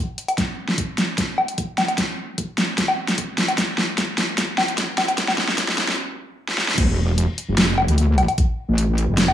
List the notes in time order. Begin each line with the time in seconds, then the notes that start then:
0.18 closed hi-hat
0.28 closed hi-hat, low woodblock
0.38 kick, snare, closed hi-hat
0.68 snare
0.78 kick, closed hi-hat
0.98 snare, closed hi-hat
1.18 kick, snare, closed hi-hat
1.38 low woodblock
1.48 closed hi-hat
1.58 kick, closed hi-hat
1.78 snare, closed hi-hat, low woodblock
1.88 closed hi-hat, low woodblock
1.98 kick, snare, closed hi-hat
2.38 kick, closed hi-hat
2.58 snare, closed hi-hat
2.78 kick, snare, closed hi-hat
2.88 low woodblock
3.08 snare, closed hi-hat
3.18 kick, closed hi-hat
3.38 snare, closed hi-hat
3.48 closed hi-hat, low woodblock
3.58 kick, snare, closed hi-hat
3.78 snare
3.98 kick, snare, closed hi-hat
4.18 snare, closed hi-hat
4.38 kick, snare, closed hi-hat
4.58 snare, low woodblock
4.68 closed hi-hat
4.78 kick, snare, closed hi-hat
4.98 snare, closed hi-hat, low woodblock
5.08 closed hi-hat, low woodblock
5.18 kick, snare, closed hi-hat
5.28 snare, low woodblock
5.38 snare
5.48 snare
5.58 kick, snare, closed hi-hat
5.68 snare
5.78 snare, closed hi-hat
5.88 snare
6.48 snare
6.58 snare
6.68 snare
6.78 D2, kick, closed hi-hat, crash
6.88 E1
7.18 closed hi-hat
7.38 closed hi-hat
7.48 F1
7.58 snare, closed hi-hat
7.78 low woodblock
7.88 D2, closed hi-hat
7.98 closed hi-hat
8.18 closed hi-hat, low woodblock
8.28 closed hi-hat, low woodblock
8.38 kick, closed hi-hat
8.68 A1
8.78 closed hi-hat
8.98 closed hi-hat
9.09 F1
9.18 snare, closed hi-hat
9.28 low woodblock